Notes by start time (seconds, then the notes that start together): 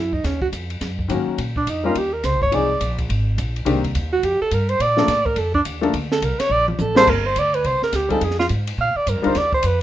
Already playing: F#2 E4
0.13 D#4, kick
0.24 D#2 C#4, kick, snare, ride
0.42 F#4, kick
0.52 F2, kick, hi-hat pedal, ride
0.70 ride
0.81 F#2, kick, snare, ride
0.99 kick
1.08 G#2 D#3 F#3 A#3 C#4 F#4, hi-hat pedal, ride
1.27 muted upright bass stroke
1.38 A#2, kick, ride
1.56 D4, kick
1.67 F2 D#4, kick, hi-hat pedal, ride
1.84 G3 A#3 C#4 D#4 F4 A#4
1.95 D#2 G4, kick, ride
2.13 A#4
2.23 C#2 C5, kick, snare, hi-hat pedal, ride
2.34 A#1
2.42 G1 C#5, kick
2.52 C2 F3 G#3 C4 D#4 G#4 D5, kick, ride
2.80 A#1, kick, hi-hat pedal, ride
2.98 kick, ride
3.09 G#1, kick, ride
3.38 A#1, kick, hi-hat pedal, ride
3.56 ride
3.65 C2 D#3 A#3 C4 D4 G4, kick, ride
3.84 kick, ride
3.95 D#2, kick, hi-hat pedal, ride
4.13 F#4
4.23 F2 G4, kick, ride
4.41 A4, muted upright bass stroke
4.51 G2 A#4, kick, hi-hat pedal, ride
4.69 C5, ride
4.80 A#2 D5, kick, ride
4.97 F3 A3 A#3 D4 A4, snare
5.08 A2, kick, snare, hi-hat pedal, ride
5.26 A#4, kick
5.36 F2 A4, kick, ride
5.54 D4, kick
5.65 D#2, kick, hi-hat pedal, ride
5.81 F3 A3 A#3 D4 A4, ride
5.94 D2, kick, ride
6.12 A4, snare
6.22 C2 A#4, kick, hi-hat pedal, ride
6.39 C#5, muted upright bass stroke, snare, ride
6.50 A#1 D5
6.68 F4, mid tom
6.79 A1 A4, hi-hat pedal, mid tom
6.95 G3 A#3 C4 F4 A4 C5, snare
7.07 G1 A#4, kick, crash
7.26 C5
7.36 D2 D5, kick, hi-hat pedal, ride
7.54 B4, ride
7.64 C2 C5, kick, ride
7.82 A#4, muted upright bass stroke, snare
7.93 D2 G4, kick, snare, hi-hat pedal, ride
8.09 G3 C4 D#4 F4 G#4 A4, kick, ride
8.21 F2 G#4, kick, ride
8.31 snare
8.39 F4, snare
8.49 G#2, kick, hi-hat pedal, ride
8.67 ride
8.78 A#2 F5, kick
8.95 D5, muted upright bass stroke
9.07 G2 A#4, kick, hi-hat pedal, ride
9.15 F2
9.22 D2 G3 D4 D#4 F4 A#4 C5, ride
9.35 D#2 D5, kick, snare, ride
9.53 C5, kick
9.63 F2 B4, kick, hi-hat pedal, ride